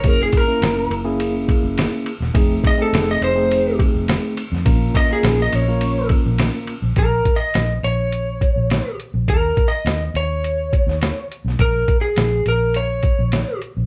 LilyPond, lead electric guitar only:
\new Staff \with { instrumentName = "Lead electric guitar" } { \time 4/4 \key bes \minor \tempo 4 = 104 bes'16 aes'16 bes'4 r2 r8 | r8 ees''16 a'8 ees''16 c''4 r4. | r8 ees''16 aes'8 ees''16 des''4 r4. | \tuplet 3/2 { bes'4 ees''8~ } ees''8 des''2 r8 |
\tuplet 3/2 { ais'4 dis''8~ } dis''8 cis''2 r8 | \tuplet 3/2 { bes'4 aes'8~ } aes'8 bes'8 des''4. r8 | }